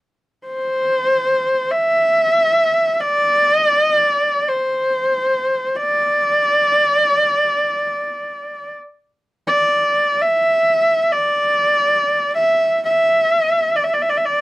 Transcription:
0, 0, Header, 1, 2, 480
1, 0, Start_track
1, 0, Tempo, 500000
1, 13835, End_track
2, 0, Start_track
2, 0, Title_t, "Horsehead fiddle"
2, 0, Program_c, 0, 110
2, 441, Note_on_c, 0, 72, 85
2, 1648, Note_on_c, 0, 76, 95
2, 1662, Note_off_c, 0, 72, 0
2, 2884, Note_on_c, 0, 74, 94
2, 2899, Note_off_c, 0, 76, 0
2, 3384, Note_off_c, 0, 74, 0
2, 3384, Note_on_c, 0, 75, 94
2, 3518, Note_off_c, 0, 75, 0
2, 3518, Note_on_c, 0, 74, 94
2, 3662, Note_off_c, 0, 74, 0
2, 3662, Note_on_c, 0, 75, 94
2, 3796, Note_off_c, 0, 75, 0
2, 3796, Note_on_c, 0, 74, 94
2, 4303, Note_on_c, 0, 72, 79
2, 4317, Note_off_c, 0, 74, 0
2, 5527, Note_on_c, 0, 74, 86
2, 5542, Note_off_c, 0, 72, 0
2, 8360, Note_off_c, 0, 74, 0
2, 9094, Note_on_c, 0, 74, 87
2, 9810, Note_on_c, 0, 76, 90
2, 9824, Note_off_c, 0, 74, 0
2, 10680, Note_on_c, 0, 74, 88
2, 10695, Note_off_c, 0, 76, 0
2, 11849, Note_off_c, 0, 74, 0
2, 11854, Note_on_c, 0, 76, 85
2, 12299, Note_off_c, 0, 76, 0
2, 12335, Note_on_c, 0, 76, 83
2, 13209, Note_on_c, 0, 74, 66
2, 13224, Note_off_c, 0, 76, 0
2, 13286, Note_on_c, 0, 76, 66
2, 13300, Note_off_c, 0, 74, 0
2, 13379, Note_on_c, 0, 74, 63
2, 13393, Note_off_c, 0, 76, 0
2, 13455, Note_on_c, 0, 76, 70
2, 13469, Note_off_c, 0, 74, 0
2, 13531, Note_on_c, 0, 74, 69
2, 13546, Note_off_c, 0, 76, 0
2, 13608, Note_on_c, 0, 76, 64
2, 13622, Note_off_c, 0, 74, 0
2, 13680, Note_on_c, 0, 74, 77
2, 13694, Note_off_c, 0, 76, 0
2, 13835, Note_off_c, 0, 74, 0
2, 13835, End_track
0, 0, End_of_file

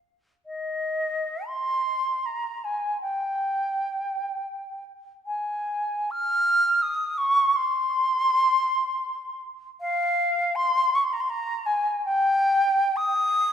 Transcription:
0, 0, Header, 1, 2, 480
1, 0, Start_track
1, 0, Tempo, 1038062
1, 208, Time_signature, 3, 2, 24, 8
1, 677, Tempo, 794702
1, 1157, Tempo, 751880
1, 3077, Tempo, 843882
1, 3557, Tempo, 727273
1, 4517, Tempo, 745342
1, 7397, Tempo, 921659
1, 7877, Tempo, 801068
1, 8218, End_track
2, 0, Start_track
2, 0, Title_t, "Flute"
2, 0, Program_c, 0, 73
2, 213, Note_on_c, 0, 75, 75
2, 677, Note_on_c, 0, 84, 91
2, 686, Note_off_c, 0, 75, 0
2, 1156, Note_on_c, 0, 82, 76
2, 1166, Note_off_c, 0, 84, 0
2, 1403, Note_on_c, 0, 80, 72
2, 1412, Note_off_c, 0, 82, 0
2, 1636, Note_off_c, 0, 80, 0
2, 1640, Note_on_c, 0, 79, 83
2, 2806, Note_off_c, 0, 79, 0
2, 3076, Note_on_c, 0, 80, 82
2, 3556, Note_on_c, 0, 89, 103
2, 3565, Note_off_c, 0, 80, 0
2, 4027, Note_on_c, 0, 87, 84
2, 4036, Note_off_c, 0, 89, 0
2, 4261, Note_on_c, 0, 85, 100
2, 4271, Note_off_c, 0, 87, 0
2, 4513, Note_on_c, 0, 84, 106
2, 4522, Note_off_c, 0, 85, 0
2, 5719, Note_off_c, 0, 84, 0
2, 5960, Note_on_c, 0, 77, 111
2, 6442, Note_on_c, 0, 84, 114
2, 6452, Note_off_c, 0, 77, 0
2, 6696, Note_on_c, 0, 85, 83
2, 6706, Note_off_c, 0, 84, 0
2, 6756, Note_on_c, 0, 84, 87
2, 6765, Note_off_c, 0, 85, 0
2, 6813, Note_on_c, 0, 82, 97
2, 6822, Note_off_c, 0, 84, 0
2, 6861, Note_on_c, 0, 84, 79
2, 6870, Note_off_c, 0, 82, 0
2, 6921, Note_on_c, 0, 82, 97
2, 6930, Note_off_c, 0, 84, 0
2, 7154, Note_on_c, 0, 80, 94
2, 7164, Note_off_c, 0, 82, 0
2, 7400, Note_off_c, 0, 80, 0
2, 7405, Note_on_c, 0, 79, 116
2, 7880, Note_on_c, 0, 87, 121
2, 7889, Note_off_c, 0, 79, 0
2, 8218, Note_off_c, 0, 87, 0
2, 8218, End_track
0, 0, End_of_file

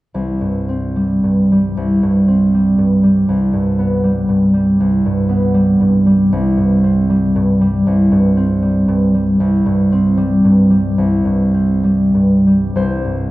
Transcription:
0, 0, Header, 1, 2, 480
1, 0, Start_track
1, 0, Tempo, 809717
1, 85, Time_signature, 4, 2, 24, 8
1, 1044, Tempo, 754717
1, 3444, Tempo, 774194
1, 6324, Tempo, 796813
1, 6804, Tempo, 888889
1, 8063, End_track
2, 0, Start_track
2, 0, Title_t, "Harp"
2, 0, Program_c, 0, 46
2, 86, Note_on_c, 0, 36, 45
2, 243, Note_on_c, 0, 43, 39
2, 407, Note_on_c, 0, 60, 39
2, 568, Note_on_c, 0, 55, 41
2, 725, Note_off_c, 0, 43, 0
2, 732, Note_on_c, 0, 43, 41
2, 893, Note_off_c, 0, 55, 0
2, 900, Note_on_c, 0, 55, 43
2, 1043, Note_off_c, 0, 36, 0
2, 1050, Note_on_c, 0, 36, 46
2, 1207, Note_off_c, 0, 43, 0
2, 1215, Note_on_c, 0, 43, 41
2, 1366, Note_off_c, 0, 60, 0
2, 1373, Note_on_c, 0, 60, 43
2, 1532, Note_off_c, 0, 55, 0
2, 1540, Note_on_c, 0, 55, 41
2, 1685, Note_off_c, 0, 43, 0
2, 1693, Note_on_c, 0, 43, 40
2, 1845, Note_off_c, 0, 55, 0
2, 1853, Note_on_c, 0, 55, 41
2, 2007, Note_off_c, 0, 36, 0
2, 2015, Note_on_c, 0, 36, 53
2, 2030, Note_off_c, 0, 43, 0
2, 2032, Note_off_c, 0, 60, 0
2, 2171, Note_on_c, 0, 43, 43
2, 2333, Note_on_c, 0, 59, 46
2, 2484, Note_off_c, 0, 55, 0
2, 2491, Note_on_c, 0, 55, 44
2, 2644, Note_off_c, 0, 43, 0
2, 2651, Note_on_c, 0, 43, 44
2, 2802, Note_off_c, 0, 55, 0
2, 2810, Note_on_c, 0, 55, 44
2, 2971, Note_off_c, 0, 36, 0
2, 2978, Note_on_c, 0, 36, 50
2, 3133, Note_off_c, 0, 43, 0
2, 3141, Note_on_c, 0, 43, 43
2, 3280, Note_off_c, 0, 59, 0
2, 3288, Note_on_c, 0, 59, 47
2, 3440, Note_off_c, 0, 55, 0
2, 3447, Note_on_c, 0, 55, 48
2, 3606, Note_off_c, 0, 43, 0
2, 3613, Note_on_c, 0, 43, 43
2, 3764, Note_off_c, 0, 55, 0
2, 3771, Note_on_c, 0, 55, 44
2, 3927, Note_off_c, 0, 36, 0
2, 3934, Note_on_c, 0, 36, 60
2, 3941, Note_off_c, 0, 59, 0
2, 3946, Note_off_c, 0, 43, 0
2, 4088, Note_on_c, 0, 43, 41
2, 4250, Note_on_c, 0, 60, 50
2, 4405, Note_off_c, 0, 55, 0
2, 4412, Note_on_c, 0, 55, 48
2, 4566, Note_off_c, 0, 43, 0
2, 4573, Note_on_c, 0, 43, 50
2, 4724, Note_off_c, 0, 55, 0
2, 4731, Note_on_c, 0, 55, 51
2, 4883, Note_off_c, 0, 36, 0
2, 4890, Note_on_c, 0, 36, 54
2, 5038, Note_off_c, 0, 43, 0
2, 5045, Note_on_c, 0, 43, 49
2, 5193, Note_off_c, 0, 60, 0
2, 5201, Note_on_c, 0, 60, 51
2, 5351, Note_off_c, 0, 55, 0
2, 5359, Note_on_c, 0, 55, 51
2, 5512, Note_off_c, 0, 43, 0
2, 5520, Note_on_c, 0, 43, 53
2, 5673, Note_off_c, 0, 55, 0
2, 5681, Note_on_c, 0, 55, 48
2, 5832, Note_off_c, 0, 36, 0
2, 5840, Note_on_c, 0, 36, 58
2, 5993, Note_off_c, 0, 43, 0
2, 6001, Note_on_c, 0, 43, 50
2, 6155, Note_off_c, 0, 60, 0
2, 6163, Note_on_c, 0, 60, 53
2, 6312, Note_off_c, 0, 55, 0
2, 6320, Note_on_c, 0, 55, 52
2, 6477, Note_off_c, 0, 43, 0
2, 6484, Note_on_c, 0, 43, 51
2, 6632, Note_off_c, 0, 55, 0
2, 6639, Note_on_c, 0, 55, 50
2, 6798, Note_off_c, 0, 36, 0
2, 6805, Note_on_c, 0, 36, 54
2, 6945, Note_off_c, 0, 43, 0
2, 6951, Note_on_c, 0, 43, 48
2, 7102, Note_off_c, 0, 60, 0
2, 7108, Note_on_c, 0, 60, 46
2, 7262, Note_off_c, 0, 55, 0
2, 7269, Note_on_c, 0, 55, 50
2, 7428, Note_off_c, 0, 43, 0
2, 7435, Note_on_c, 0, 43, 42
2, 7603, Note_off_c, 0, 55, 0
2, 7610, Note_on_c, 0, 55, 40
2, 7760, Note_off_c, 0, 36, 0
2, 7764, Note_on_c, 0, 36, 48
2, 7769, Note_on_c, 0, 72, 64
2, 7791, Note_off_c, 0, 43, 0
2, 7922, Note_on_c, 0, 43, 37
2, 8063, Note_off_c, 0, 36, 0
2, 8063, Note_off_c, 0, 43, 0
2, 8063, Note_off_c, 0, 55, 0
2, 8063, Note_off_c, 0, 60, 0
2, 8063, Note_off_c, 0, 72, 0
2, 8063, End_track
0, 0, End_of_file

